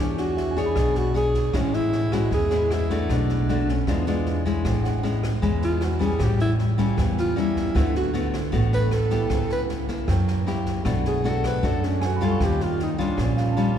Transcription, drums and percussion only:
0.17 snare soft
0.37 snare soft
0.56 kick soft
0.56 snare soft
0.76 kick medium
0.76 cross-stick medium
0.76 snare soft
0.95 snare soft
1.15 snare soft
1.34 kick soft
1.34 snare soft
1.53 kick medium
1.53 cross-stick medium
1.53 snare soft
1.73 snare soft
1.92 snare soft
2.12 kick soft
2.12 cross-stick medium
2.12 snare soft
2.31 kick medium
2.31 snare soft
2.51 snare soft
2.70 cross-stick medium
2.70 snare soft
2.90 kick soft
2.90 snare soft
3.09 kick medium
3.09 cross-stick medium
3.09 snare soft
3.29 snare soft
3.49 snare soft
3.68 kick soft
3.68 snare soft
3.87 kick medium
3.87 cross-stick medium
3.87 snare soft
4.07 snare soft
4.26 snare soft
4.45 kick soft
4.45 snare soft
4.65 kick medium
4.65 cross-stick medium
4.65 snare soft
4.84 snare soft
5.04 snare soft
5.23 kick soft
5.23 cross-stick medium
5.23 snare soft
5.42 kick medium
5.42 snare soft
5.62 snare soft
5.81 cross-stick medium
5.81 snare soft
6.00 kick soft
6.00 snare soft
6.20 kick medium
6.20 cross-stick medium
6.20 snare soft
6.39 snare soft
6.59 snare soft
6.78 kick soft
6.78 snare soft
6.98 kick medium
6.98 cross-stick medium
6.98 snare soft
7.18 snare soft
7.37 snare soft
7.56 kick soft
7.56 snare soft
7.75 kick medium
7.75 cross-stick medium
7.75 snare soft
7.95 snare soft
8.14 snare soft
8.33 kick soft
8.33 cross-stick medium
8.33 snare soft
8.53 kick medium
8.53 snare soft
8.72 snare soft
8.91 cross-stick medium
8.91 snare soft
9.10 kick soft
9.10 snare soft
9.30 kick medium
9.30 cross-stick medium
9.30 snare soft
9.50 snare soft
9.69 snare soft
9.88 kick soft
9.88 snare soft
10.08 kick medium
10.08 cross-stick medium
10.08 snare soft
10.28 snare soft
10.47 snare soft
10.66 kick soft
10.66 snare soft
10.85 kick medium
10.85 cross-stick medium
10.85 snare soft
11.05 snare soft
11.24 snare soft
11.44 kick soft
11.44 cross-stick medium
11.44 snare soft
11.63 kick medium
11.63 snare soft
11.83 snare soft
12.02 cross-stick medium
12.02 snare soft
12.21 kick soft
12.21 snare soft
12.40 kick medium
12.40 cross-stick medium
12.40 snare soft
12.60 snare soft
12.79 snare soft
12.99 kick soft
12.99 snare soft
13.18 kick medium
13.18 cross-stick medium
13.18 snare soft
13.37 snare soft
13.57 snare soft

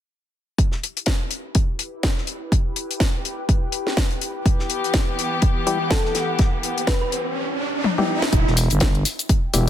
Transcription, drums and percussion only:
0.58 kick loud
0.58 closed hi-hat medium
0.72 snare soft
0.83 closed hi-hat medium
0.97 closed hi-hat soft
1.06 kick loud
1.06 snare loud
1.06 closed hi-hat medium
1.31 closed hi-hat medium
1.55 kick loud
1.55 closed hi-hat medium
1.79 closed hi-hat medium
2.03 kick loud
2.03 snare loud
2.03 closed hi-hat medium
2.18 snare medium
2.27 closed hi-hat medium
2.52 kick loud
2.52 closed hi-hat medium
2.76 closed hi-hat medium
2.91 closed hi-hat soft
3.00 kick loud
3.00 snare loud
3.00 closed hi-hat medium
3.25 closed hi-hat medium
3.49 kick loud
3.49 closed hi-hat medium
3.72 closed hi-hat medium
3.87 snare soft
3.97 kick loud
3.97 snare loud
3.97 closed hi-hat medium
4.11 closed hi-hat soft
4.21 closed hi-hat medium
4.46 kick loud
4.46 closed hi-hat medium
4.59 snare medium
4.70 closed hi-hat medium
4.84 closed hi-hat soft
4.94 kick loud
4.94 snare loud
4.94 closed hi-hat medium
5.19 closed hi-hat medium
5.42 kick loud
5.42 closed hi-hat medium
5.67 closed hi-hat medium
5.91 kick loud
5.91 snare loud
5.91 closed hi-hat medium
6.05 snare medium
6.15 snare loud
6.15 closed hi-hat medium
6.39 kick loud
6.39 snare loud
6.39 closed hi-hat medium
6.63 closed hi-hat medium
6.78 closed hi-hat soft
6.87 kick loud
6.87 snare loud
6.87 closed hi-hat medium
7.12 closed hi-hat medium
7.84 high tom medium
7.98 high tom medium
8.22 snare medium
8.32 kick loud
8.32 closed hi-hat medium
8.32 shaker soft
8.47 snare medium
8.57 closed hi-hat medium
8.57 open hi-hat loud
8.57 shaker medium
8.70 closed hi-hat soft
8.70 closed hi-hat medium
8.70 shaker soft
8.80 kick loud
8.80 snare loud
8.80 closed hi-hat medium
8.80 shaker soft
8.95 closed hi-hat soft
9.05 closed hi-hat medium
9.05 open hi-hat loud
9.05 shaker medium
9.19 closed hi-hat medium
9.19 shaker soft
9.29 kick loud
9.29 closed hi-hat medium
9.29 shaker soft
9.54 closed hi-hat medium
9.54 open hi-hat loud
9.54 shaker medium

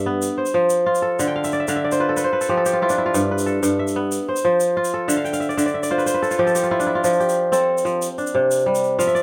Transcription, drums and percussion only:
0.22 shaker medium
0.46 shaker soft
0.70 shaker medium
0.95 shaker soft
1.19 shaker medium
1.44 shaker medium
1.52 shaker soft
1.68 shaker medium
1.92 shaker soft
2.17 shaker medium
2.41 shaker soft
2.66 shaker medium
2.89 shaker soft
3.15 shaker medium
3.38 shaker medium
3.47 shaker soft
3.63 shaker medium
3.88 shaker medium
4.12 shaker medium
4.36 shaker medium
4.60 shaker medium
4.84 shaker medium
5.09 shaker medium
5.25 shaker soft
5.33 shaker medium
5.42 shaker soft
5.50 shaker soft
5.58 shaker medium
5.67 shaker soft
5.83 shaker medium
5.99 shaker soft
6.07 shaker medium
6.24 shaker soft
6.31 shaker soft
6.47 shaker soft
6.55 shaker medium
6.63 shaker soft
6.80 shaker soft
7.04 shaker medium
7.20 shaker soft
7.29 shaker soft
7.53 shaker medium
7.78 shaker soft
7.86 shaker soft
8.02 shaker medium
8.18 shaker soft
8.27 shaker soft
8.51 shaker medium
8.59 shaker soft
8.75 shaker soft
8.84 shaker soft
9.00 shaker medium
9.09 shaker soft
9.16 shaker soft

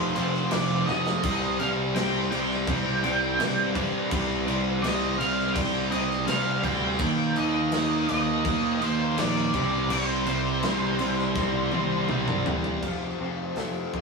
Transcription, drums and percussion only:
0.16 crash medium
0.34 snare soft
0.51 snare loud
0.51 crash medium
0.88 snare medium
1.06 snare medium
1.24 kick loud
1.24 crash medium
1.59 crash medium
1.96 snare loud
1.96 crash medium
2.32 crash medium
2.51 snare soft
2.67 kick loud
2.67 crash medium
3.04 crash medium
3.40 snare loud
3.40 crash medium
3.75 kick medium
3.75 crash medium
4.11 kick loud
4.11 crash medium
4.48 crash medium
4.84 snare loud
4.84 crash medium
5.21 crash medium
5.39 snare soft
5.56 kick loud
5.56 crash medium
5.92 crash medium
6.11 snare soft
6.28 snare loud
6.28 crash medium
6.64 kick medium
6.64 crash medium
6.99 kick loud
6.99 crash medium
7.36 crash medium
7.72 snare loud
7.72 crash medium
8.09 crash medium
8.45 kick loud
8.45 crash medium
8.82 crash medium
9.18 snare loud
9.18 crash medium
9.54 kick loud
9.54 crash medium
9.90 crash medium
10.26 crash medium
10.63 snare loud
10.63 crash medium
10.99 crash medium
11.19 snare soft
11.36 kick loud
11.36 snare medium
11.72 high tom medium
12.09 mid tom loud
12.28 mid tom medium
12.46 floor tom loud
12.64 floor tom loud
12.83 kick loud
12.83 crash medium
13.56 snare medium
13.56 open hi-hat soft
13.94 kick medium

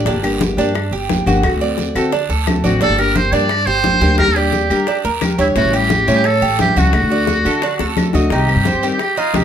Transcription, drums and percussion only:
0.06 high bongo medium
0.06 high conga soft
0.06 long guiro medium
0.24 high conga soft
0.24 claves medium
0.41 high bongo medium
0.41 high conga loud
0.41 short guiro medium
0.58 high conga soft
0.58 short guiro medium
0.75 high bongo medium
0.75 high conga soft
0.75 long guiro medium
0.75 claves medium
0.93 high conga soft
1.09 high bongo medium
1.09 low bongo medium
1.09 high conga medium
1.09 short guiro medium
1.27 high conga medium
1.27 short guiro medium
1.43 high bongo medium
1.43 high conga soft
1.43 long guiro medium
1.43 claves medium
1.61 high bongo soft
1.61 high conga soft
1.78 high bongo medium
1.78 high conga medium
1.78 short guiro medium
1.95 high bongo soft
1.95 high conga soft
1.95 short guiro medium
1.95 claves medium
2.12 high bongo medium
2.12 high conga soft
2.12 long guiro medium
2.30 high bongo soft
2.30 high conga soft
2.47 high bongo medium
2.47 low bongo medium
2.47 high conga medium
2.47 short guiro medium
2.47 claves medium
2.64 high conga medium
2.64 short guiro medium
2.81 high bongo medium
2.81 high conga soft
2.81 long guiro medium
2.98 high conga soft
2.98 claves medium
3.15 high bongo medium
3.15 high conga medium
3.15 short guiro medium
3.33 high conga soft
3.33 short guiro medium
3.49 high bongo medium
3.49 high conga soft
3.49 long guiro medium
3.49 claves medium
3.67 high conga soft
3.84 high bongo medium
3.84 low bongo medium
3.84 high conga medium
3.84 short guiro medium
4.01 high conga medium
4.01 short guiro medium
4.18 high bongo medium
4.18 high conga soft
4.18 long guiro medium
4.18 claves medium
4.36 high bongo soft
4.36 high conga soft
4.53 high bongo medium
4.53 high conga medium
4.53 short guiro medium
4.69 high bongo soft
4.69 high conga soft
4.69 short guiro medium
4.69 claves medium
4.87 high bongo medium
4.87 high conga soft
4.87 long guiro medium
5.04 high bongo soft
5.04 high conga soft
5.21 high bongo medium
5.21 low bongo medium
5.21 high conga medium
5.21 short guiro medium
5.21 claves medium
5.38 short guiro medium
5.56 high bongo medium
5.56 high conga soft
5.56 long guiro medium
5.74 high conga soft
5.74 claves medium
5.90 high bongo medium
5.90 high conga loud
5.90 short guiro medium
6.08 high conga soft
6.08 short guiro medium
6.24 high bongo medium
6.24 high conga soft
6.24 long guiro medium
6.24 claves medium
6.43 high conga soft
6.59 high bongo medium
6.59 low bongo medium
6.59 high conga medium
6.59 short guiro medium
6.76 high conga medium
6.76 short guiro medium
6.93 high bongo medium
6.93 high conga soft
6.93 long guiro medium
6.93 claves medium
7.10 high bongo soft
7.10 high conga soft
7.27 high bongo medium
7.27 high conga medium
7.27 short guiro medium
7.45 high bongo soft
7.45 high conga soft
7.45 short guiro medium
7.45 claves medium
7.62 high bongo medium
7.62 high conga soft
7.62 long guiro medium
7.79 high bongo loud
7.79 high conga soft
7.97 high bongo medium
7.97 high conga medium
7.97 short guiro medium
7.97 claves medium
8.13 low bongo medium
8.13 short guiro medium
8.30 high bongo medium
8.30 high conga soft
8.30 long guiro medium
8.49 high conga soft
8.49 claves medium
8.65 high bongo medium
8.65 high conga medium
8.65 short guiro medium
8.83 high conga soft
8.83 short guiro medium
8.99 high bongo medium
8.99 high conga soft
8.99 long guiro medium
8.99 claves medium
9.17 high conga soft
9.34 high bongo medium
9.34 low bongo medium
9.34 high conga medium
9.34 short guiro medium

